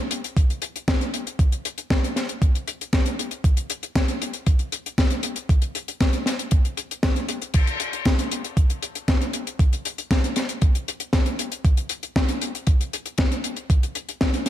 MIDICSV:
0, 0, Header, 1, 2, 480
1, 0, Start_track
1, 0, Tempo, 512821
1, 1302, Time_signature, 4, 2, 24, 8
1, 13564, End_track
2, 0, Start_track
2, 0, Title_t, "Drums"
2, 101, Note_on_c, 9, 42, 93
2, 195, Note_off_c, 9, 42, 0
2, 227, Note_on_c, 9, 42, 56
2, 321, Note_off_c, 9, 42, 0
2, 343, Note_on_c, 9, 36, 115
2, 347, Note_on_c, 9, 42, 73
2, 436, Note_off_c, 9, 36, 0
2, 440, Note_off_c, 9, 42, 0
2, 469, Note_on_c, 9, 42, 47
2, 562, Note_off_c, 9, 42, 0
2, 578, Note_on_c, 9, 42, 97
2, 671, Note_off_c, 9, 42, 0
2, 708, Note_on_c, 9, 42, 51
2, 802, Note_off_c, 9, 42, 0
2, 823, Note_on_c, 9, 36, 114
2, 823, Note_on_c, 9, 42, 73
2, 826, Note_on_c, 9, 38, 115
2, 916, Note_off_c, 9, 36, 0
2, 917, Note_off_c, 9, 42, 0
2, 919, Note_off_c, 9, 38, 0
2, 947, Note_on_c, 9, 42, 52
2, 1040, Note_off_c, 9, 42, 0
2, 1065, Note_on_c, 9, 42, 88
2, 1158, Note_off_c, 9, 42, 0
2, 1188, Note_on_c, 9, 42, 52
2, 1281, Note_off_c, 9, 42, 0
2, 1302, Note_on_c, 9, 36, 109
2, 1306, Note_on_c, 9, 42, 69
2, 1396, Note_off_c, 9, 36, 0
2, 1400, Note_off_c, 9, 42, 0
2, 1425, Note_on_c, 9, 42, 53
2, 1519, Note_off_c, 9, 42, 0
2, 1546, Note_on_c, 9, 42, 98
2, 1639, Note_off_c, 9, 42, 0
2, 1664, Note_on_c, 9, 42, 55
2, 1757, Note_off_c, 9, 42, 0
2, 1782, Note_on_c, 9, 36, 106
2, 1784, Note_on_c, 9, 42, 71
2, 1785, Note_on_c, 9, 38, 107
2, 1876, Note_off_c, 9, 36, 0
2, 1878, Note_off_c, 9, 42, 0
2, 1879, Note_off_c, 9, 38, 0
2, 1913, Note_on_c, 9, 42, 52
2, 2006, Note_off_c, 9, 42, 0
2, 2024, Note_on_c, 9, 38, 56
2, 2028, Note_on_c, 9, 42, 83
2, 2117, Note_off_c, 9, 38, 0
2, 2121, Note_off_c, 9, 42, 0
2, 2143, Note_on_c, 9, 42, 50
2, 2237, Note_off_c, 9, 42, 0
2, 2262, Note_on_c, 9, 36, 110
2, 2266, Note_on_c, 9, 42, 67
2, 2356, Note_off_c, 9, 36, 0
2, 2360, Note_off_c, 9, 42, 0
2, 2389, Note_on_c, 9, 42, 54
2, 2483, Note_off_c, 9, 42, 0
2, 2504, Note_on_c, 9, 42, 89
2, 2598, Note_off_c, 9, 42, 0
2, 2632, Note_on_c, 9, 42, 50
2, 2726, Note_off_c, 9, 42, 0
2, 2741, Note_on_c, 9, 42, 72
2, 2742, Note_on_c, 9, 36, 110
2, 2744, Note_on_c, 9, 38, 105
2, 2834, Note_off_c, 9, 42, 0
2, 2836, Note_off_c, 9, 36, 0
2, 2837, Note_off_c, 9, 38, 0
2, 2862, Note_on_c, 9, 42, 55
2, 2955, Note_off_c, 9, 42, 0
2, 2988, Note_on_c, 9, 42, 89
2, 3082, Note_off_c, 9, 42, 0
2, 3098, Note_on_c, 9, 42, 54
2, 3192, Note_off_c, 9, 42, 0
2, 3222, Note_on_c, 9, 36, 106
2, 3226, Note_on_c, 9, 42, 68
2, 3315, Note_off_c, 9, 36, 0
2, 3320, Note_off_c, 9, 42, 0
2, 3341, Note_on_c, 9, 42, 58
2, 3434, Note_off_c, 9, 42, 0
2, 3460, Note_on_c, 9, 42, 102
2, 3554, Note_off_c, 9, 42, 0
2, 3584, Note_on_c, 9, 42, 49
2, 3677, Note_off_c, 9, 42, 0
2, 3702, Note_on_c, 9, 36, 106
2, 3703, Note_on_c, 9, 42, 68
2, 3705, Note_on_c, 9, 38, 110
2, 3795, Note_off_c, 9, 36, 0
2, 3796, Note_off_c, 9, 42, 0
2, 3799, Note_off_c, 9, 38, 0
2, 3821, Note_on_c, 9, 42, 49
2, 3915, Note_off_c, 9, 42, 0
2, 3947, Note_on_c, 9, 42, 95
2, 4040, Note_off_c, 9, 42, 0
2, 4058, Note_on_c, 9, 42, 50
2, 4151, Note_off_c, 9, 42, 0
2, 4179, Note_on_c, 9, 42, 75
2, 4182, Note_on_c, 9, 36, 108
2, 4272, Note_off_c, 9, 42, 0
2, 4275, Note_off_c, 9, 36, 0
2, 4296, Note_on_c, 9, 42, 46
2, 4390, Note_off_c, 9, 42, 0
2, 4421, Note_on_c, 9, 42, 89
2, 4514, Note_off_c, 9, 42, 0
2, 4550, Note_on_c, 9, 42, 50
2, 4643, Note_off_c, 9, 42, 0
2, 4662, Note_on_c, 9, 36, 110
2, 4665, Note_on_c, 9, 42, 75
2, 4667, Note_on_c, 9, 38, 102
2, 4755, Note_off_c, 9, 36, 0
2, 4759, Note_off_c, 9, 42, 0
2, 4761, Note_off_c, 9, 38, 0
2, 4777, Note_on_c, 9, 42, 58
2, 4870, Note_off_c, 9, 42, 0
2, 4895, Note_on_c, 9, 42, 95
2, 4989, Note_off_c, 9, 42, 0
2, 5016, Note_on_c, 9, 42, 53
2, 5109, Note_off_c, 9, 42, 0
2, 5142, Note_on_c, 9, 36, 112
2, 5149, Note_on_c, 9, 42, 71
2, 5235, Note_off_c, 9, 36, 0
2, 5243, Note_off_c, 9, 42, 0
2, 5258, Note_on_c, 9, 42, 54
2, 5351, Note_off_c, 9, 42, 0
2, 5382, Note_on_c, 9, 42, 94
2, 5476, Note_off_c, 9, 42, 0
2, 5505, Note_on_c, 9, 42, 52
2, 5599, Note_off_c, 9, 42, 0
2, 5620, Note_on_c, 9, 42, 73
2, 5622, Note_on_c, 9, 36, 106
2, 5623, Note_on_c, 9, 38, 99
2, 5714, Note_off_c, 9, 42, 0
2, 5715, Note_off_c, 9, 36, 0
2, 5717, Note_off_c, 9, 38, 0
2, 5736, Note_on_c, 9, 42, 57
2, 5829, Note_off_c, 9, 42, 0
2, 5859, Note_on_c, 9, 38, 60
2, 5868, Note_on_c, 9, 42, 99
2, 5952, Note_off_c, 9, 38, 0
2, 5961, Note_off_c, 9, 42, 0
2, 5983, Note_on_c, 9, 42, 56
2, 6077, Note_off_c, 9, 42, 0
2, 6093, Note_on_c, 9, 42, 68
2, 6101, Note_on_c, 9, 36, 110
2, 6187, Note_off_c, 9, 42, 0
2, 6195, Note_off_c, 9, 36, 0
2, 6223, Note_on_c, 9, 42, 54
2, 6316, Note_off_c, 9, 42, 0
2, 6340, Note_on_c, 9, 42, 89
2, 6434, Note_off_c, 9, 42, 0
2, 6469, Note_on_c, 9, 42, 56
2, 6563, Note_off_c, 9, 42, 0
2, 6579, Note_on_c, 9, 38, 114
2, 6581, Note_on_c, 9, 36, 114
2, 6582, Note_on_c, 9, 42, 69
2, 6673, Note_off_c, 9, 38, 0
2, 6675, Note_off_c, 9, 36, 0
2, 6676, Note_off_c, 9, 42, 0
2, 6702, Note_on_c, 9, 42, 49
2, 6795, Note_off_c, 9, 42, 0
2, 6819, Note_on_c, 9, 42, 100
2, 6913, Note_off_c, 9, 42, 0
2, 6941, Note_on_c, 9, 42, 56
2, 7035, Note_off_c, 9, 42, 0
2, 7055, Note_on_c, 9, 42, 80
2, 7061, Note_on_c, 9, 36, 109
2, 7066, Note_on_c, 9, 49, 72
2, 7149, Note_off_c, 9, 42, 0
2, 7155, Note_off_c, 9, 36, 0
2, 7160, Note_off_c, 9, 49, 0
2, 7181, Note_on_c, 9, 42, 54
2, 7275, Note_off_c, 9, 42, 0
2, 7299, Note_on_c, 9, 42, 103
2, 7392, Note_off_c, 9, 42, 0
2, 7423, Note_on_c, 9, 42, 48
2, 7517, Note_off_c, 9, 42, 0
2, 7538, Note_on_c, 9, 42, 69
2, 7541, Note_on_c, 9, 36, 112
2, 7546, Note_on_c, 9, 38, 113
2, 7632, Note_off_c, 9, 42, 0
2, 7634, Note_off_c, 9, 36, 0
2, 7640, Note_off_c, 9, 38, 0
2, 7664, Note_on_c, 9, 42, 60
2, 7758, Note_off_c, 9, 42, 0
2, 7783, Note_on_c, 9, 42, 99
2, 7876, Note_off_c, 9, 42, 0
2, 7904, Note_on_c, 9, 42, 59
2, 7998, Note_off_c, 9, 42, 0
2, 8021, Note_on_c, 9, 36, 112
2, 8022, Note_on_c, 9, 42, 69
2, 8114, Note_off_c, 9, 36, 0
2, 8116, Note_off_c, 9, 42, 0
2, 8142, Note_on_c, 9, 42, 59
2, 8236, Note_off_c, 9, 42, 0
2, 8260, Note_on_c, 9, 42, 91
2, 8354, Note_off_c, 9, 42, 0
2, 8381, Note_on_c, 9, 42, 53
2, 8474, Note_off_c, 9, 42, 0
2, 8500, Note_on_c, 9, 36, 115
2, 8500, Note_on_c, 9, 42, 76
2, 8504, Note_on_c, 9, 38, 112
2, 8593, Note_off_c, 9, 42, 0
2, 8594, Note_off_c, 9, 36, 0
2, 8598, Note_off_c, 9, 38, 0
2, 8624, Note_on_c, 9, 42, 50
2, 8718, Note_off_c, 9, 42, 0
2, 8737, Note_on_c, 9, 42, 90
2, 8831, Note_off_c, 9, 42, 0
2, 8864, Note_on_c, 9, 42, 56
2, 8958, Note_off_c, 9, 42, 0
2, 8980, Note_on_c, 9, 36, 116
2, 8987, Note_on_c, 9, 42, 74
2, 9074, Note_off_c, 9, 36, 0
2, 9081, Note_off_c, 9, 42, 0
2, 9105, Note_on_c, 9, 42, 57
2, 9198, Note_off_c, 9, 42, 0
2, 9222, Note_on_c, 9, 42, 97
2, 9316, Note_off_c, 9, 42, 0
2, 9344, Note_on_c, 9, 42, 55
2, 9437, Note_off_c, 9, 42, 0
2, 9460, Note_on_c, 9, 36, 116
2, 9464, Note_on_c, 9, 42, 78
2, 9467, Note_on_c, 9, 38, 121
2, 9554, Note_off_c, 9, 36, 0
2, 9558, Note_off_c, 9, 42, 0
2, 9561, Note_off_c, 9, 38, 0
2, 9585, Note_on_c, 9, 42, 51
2, 9678, Note_off_c, 9, 42, 0
2, 9696, Note_on_c, 9, 42, 99
2, 9703, Note_on_c, 9, 38, 62
2, 9790, Note_off_c, 9, 42, 0
2, 9796, Note_off_c, 9, 38, 0
2, 9818, Note_on_c, 9, 42, 53
2, 9912, Note_off_c, 9, 42, 0
2, 9936, Note_on_c, 9, 42, 74
2, 9940, Note_on_c, 9, 36, 117
2, 10030, Note_off_c, 9, 42, 0
2, 10034, Note_off_c, 9, 36, 0
2, 10063, Note_on_c, 9, 42, 60
2, 10156, Note_off_c, 9, 42, 0
2, 10185, Note_on_c, 9, 42, 100
2, 10279, Note_off_c, 9, 42, 0
2, 10296, Note_on_c, 9, 42, 58
2, 10389, Note_off_c, 9, 42, 0
2, 10416, Note_on_c, 9, 38, 112
2, 10420, Note_on_c, 9, 36, 116
2, 10422, Note_on_c, 9, 42, 74
2, 10510, Note_off_c, 9, 38, 0
2, 10514, Note_off_c, 9, 36, 0
2, 10516, Note_off_c, 9, 42, 0
2, 10537, Note_on_c, 9, 42, 56
2, 10631, Note_off_c, 9, 42, 0
2, 10661, Note_on_c, 9, 42, 99
2, 10755, Note_off_c, 9, 42, 0
2, 10780, Note_on_c, 9, 42, 60
2, 10873, Note_off_c, 9, 42, 0
2, 10900, Note_on_c, 9, 36, 121
2, 10902, Note_on_c, 9, 42, 76
2, 10994, Note_off_c, 9, 36, 0
2, 10996, Note_off_c, 9, 42, 0
2, 11019, Note_on_c, 9, 42, 60
2, 11113, Note_off_c, 9, 42, 0
2, 11132, Note_on_c, 9, 42, 89
2, 11226, Note_off_c, 9, 42, 0
2, 11259, Note_on_c, 9, 42, 51
2, 11353, Note_off_c, 9, 42, 0
2, 11381, Note_on_c, 9, 36, 119
2, 11384, Note_on_c, 9, 38, 127
2, 11387, Note_on_c, 9, 42, 77
2, 11474, Note_off_c, 9, 36, 0
2, 11478, Note_off_c, 9, 38, 0
2, 11481, Note_off_c, 9, 42, 0
2, 11498, Note_on_c, 9, 42, 57
2, 11592, Note_off_c, 9, 42, 0
2, 11620, Note_on_c, 9, 42, 85
2, 11714, Note_off_c, 9, 42, 0
2, 11746, Note_on_c, 9, 42, 53
2, 11840, Note_off_c, 9, 42, 0
2, 11856, Note_on_c, 9, 42, 74
2, 11861, Note_on_c, 9, 36, 116
2, 11950, Note_off_c, 9, 42, 0
2, 11954, Note_off_c, 9, 36, 0
2, 11987, Note_on_c, 9, 42, 57
2, 12081, Note_off_c, 9, 42, 0
2, 12106, Note_on_c, 9, 42, 101
2, 12200, Note_off_c, 9, 42, 0
2, 12220, Note_on_c, 9, 42, 55
2, 12314, Note_off_c, 9, 42, 0
2, 12334, Note_on_c, 9, 42, 77
2, 12341, Note_on_c, 9, 36, 120
2, 12343, Note_on_c, 9, 38, 109
2, 12427, Note_off_c, 9, 42, 0
2, 12434, Note_off_c, 9, 36, 0
2, 12437, Note_off_c, 9, 38, 0
2, 12464, Note_on_c, 9, 42, 56
2, 12558, Note_off_c, 9, 42, 0
2, 12580, Note_on_c, 9, 42, 85
2, 12674, Note_off_c, 9, 42, 0
2, 12696, Note_on_c, 9, 42, 53
2, 12790, Note_off_c, 9, 42, 0
2, 12821, Note_on_c, 9, 36, 116
2, 12824, Note_on_c, 9, 42, 77
2, 12915, Note_off_c, 9, 36, 0
2, 12918, Note_off_c, 9, 42, 0
2, 12946, Note_on_c, 9, 42, 54
2, 13040, Note_off_c, 9, 42, 0
2, 13059, Note_on_c, 9, 42, 91
2, 13152, Note_off_c, 9, 42, 0
2, 13185, Note_on_c, 9, 42, 53
2, 13278, Note_off_c, 9, 42, 0
2, 13299, Note_on_c, 9, 38, 127
2, 13301, Note_on_c, 9, 36, 114
2, 13303, Note_on_c, 9, 42, 71
2, 13392, Note_off_c, 9, 38, 0
2, 13395, Note_off_c, 9, 36, 0
2, 13397, Note_off_c, 9, 42, 0
2, 13420, Note_on_c, 9, 42, 57
2, 13513, Note_off_c, 9, 42, 0
2, 13534, Note_on_c, 9, 42, 97
2, 13535, Note_on_c, 9, 38, 59
2, 13564, Note_off_c, 9, 38, 0
2, 13564, Note_off_c, 9, 42, 0
2, 13564, End_track
0, 0, End_of_file